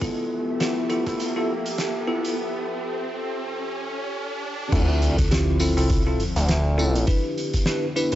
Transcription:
Already playing: riser
0.01 ambient pad F3 B3 G4 A4 E5, tine electric piano B3 E4 F4 A4, kick, closed hi-hat
0.60 tine electric piano B3 E4 F4 G4, snare, closed hi-hat
0.90 tine electric piano B3 E4 F4 A4, closed hi-hat
1.06 tine electric piano B3 E4 F4 A4, kick, closed hi-hat
1.20 closed hi-hat
1.36 tine electric piano B3 E4 F4 A4
1.66 closed hi-hat
1.78 snare, closed hi-hat
2.07 tine electric piano B3 E4 F4 A4
2.24 closed hi-hat
4.72 analog synth bass D2, ambient pad D3 F3 C4, tine electric piano C4 E4 F4 A4, kick, closed hi-hat, crash, sub drop
5.02 closed hi-hat
5.18 fingered electric bass D2, kick, closed hi-hat
5.31 tine electric piano C4 E4 F4 G4, snare, closed hi-hat
5.60 tine electric piano C4 E4 F4 A4, closed hi-hat, tambourine
5.65 closed hi-hat
5.70 closed hi-hat
5.74 tine electric piano C4 E4 F4 A4, closed hi-hat
5.77 fingered electric bass C2, closed hi-hat
5.82 closed hi-hat
5.84 closed hi-hat
5.88 closed hi-hat
5.90 kick, closed hi-hat
6.07 tine electric piano C4 E4 F4 A4
6.20 closed hi-hat
6.36 analog synth bass D2, closed hi-hat
6.48 snare, closed hi-hat
6.78 tine electric piano C4 E4 F4 A4, tambourine
6.95 closed hi-hat
7.07 ambient pad B3 E4, tine electric piano D4 E4 G4 B4, kick, closed hi-hat
7.38 closed hi-hat
7.53 kick, closed hi-hat
7.66 tine electric piano D4 E4 G4 B4, snare, closed hi-hat
7.96 tine electric piano D4 E4 G4 B4, closed hi-hat, tambourine
8.12 closed hi-hat

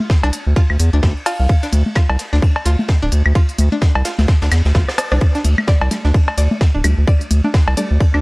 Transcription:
0.00 high conga
0.10 kick, snare, ride
0.23 analog synth bass C2, synth pluck D4, cowbell
0.33 open hi-hat, ride
0.47 analog synth bass D2
0.56 synth pluck F4, kick, ride
0.70 analog synth bass D2, high woodblock
0.79 analog synth bass E2, open hi-hat, ride
0.93 analog synth bass D2, synth pluck D4
1.03 analog synth bass D2, kick, snare, ride
1.17 ride
1.26 synth pluck F4, synth bell F5, open hi-hat, cowbell
1.40 analog synth bass C2, synth bell F5, ride
1.49 kick, ride
1.63 synth pluck D4, snare, open hi-hat
1.73 analog synth bass D2, open hi-hat, ride, high conga
1.86 high conga
1.95 synth pluck F4, kick, snare, ride, high woodblock
2.09 analog synth bass C2, cowbell
2.19 snare, open hi-hat, ride
2.33 analog synth bass D2, synth pluck D4, snare
2.42 kick, ride
2.56 cowbell
2.65 analog synth bass D2, synth pluck F4, snare, open hi-hat, ride
2.79 ride, high conga
2.88 kick, snare, ride
3.02 analog synth bass D1, synth pluck D4
3.12 analog synth bass D2, open hi-hat, ride
3.26 analog synth bass D2, high woodblock
3.35 synth pluck F4, kick, ride
3.49 open hi-hat
3.59 analog synth bass D2, open hi-hat, ride, high conga
3.72 synth pluck D4, high conga
3.82 kick, snare, ride
3.95 analog synth bass C2, cowbell
4.05 synth pluck F4, snare, open hi-hat, ride
4.19 analog synth bass D2, snare, ride, high conga
4.28 kick, snare, ride
4.41 analog synth bass D2, synth pluck D4, snare, ride
4.52 analog synth bass E2, snare, open hi-hat, ride, high woodblock
4.65 analog synth bass D2, snare, ride
4.75 analog synth bass D2, synth pluck F4, kick, snare, ride
4.89 cross-stick, snare, ride
4.98 cross-stick, open hi-hat, cowbell
5.12 analog synth bass C2, synth pluck D4, cross-stick, ride
5.21 kick, ride
5.35 synth pluck D4, snare, open hi-hat
5.45 analog synth bass D2, open hi-hat, ride, high conga
5.58 high conga, high woodblock
5.67 synth pluck D5, kick, snare, ride
5.81 analog synth bass C2, cowbell
5.91 synth stab G3 A3 D4, snare, open hi-hat, ride
6.04 analog synth bass D2, synth pluck D4, snare
6.14 kick, ride
6.28 cowbell
6.38 analog synth bass D2, synth pluck D5, snare, open hi-hat, ride
6.51 ride, high conga
6.61 kick, snare, ride
6.74 analog synth bass D1, synth pluck D4
6.84 analog synth bass D2, synth stab G3 A3 D4, open hi-hat, ride, high woodblock
6.98 analog synth bass D2
7.07 synth pluck D5, kick, ride
7.21 open hi-hat
7.31 analog synth bass D2, open hi-hat, ride, high conga
7.44 synth pluck D4, high conga
7.54 kick, snare, ride
7.68 analog synth bass C2, cowbell
7.77 synth stab G3 A3 D4, synth pluck D5, open hi-hat, ride
7.91 analog synth bass D2
8.00 kick, ride
8.14 analog synth bass D2, synth pluck D4, high woodblock

